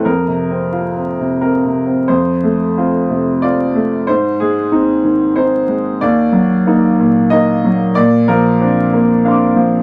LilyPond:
<<
  \new Staff \with { instrumentName = "Upright piano" } { \time 3/4 \key f \dorian \tempo 4 = 92 bes'2 bes'4 | c''2 d''4 | c''8 aes'4 r8 c''4 | d''2 ees''4 |
d''8 bes'4 r8 <f'' c''' d'''>4 | }
  \new Staff \with { instrumentName = "Upright piano" } { \time 3/4 \key f \dorian \tuplet 3/2 { f,8 c8 c'8 f'8 c'8 c8 c'8 c8 c'8 } | f,8 a8 <c' f'>8 c8 <c' f'>8 a8 | aes,8 aes8 <c' ees'>8 ees8 <c' ees'>8 aes8 | ees,8 ges8 <bes ees'>8 bes,8 <bes ees'>8 ges8 |
bes,8 f8 <c' d'>8 bes8 <c' d'>8 f8 | }
>>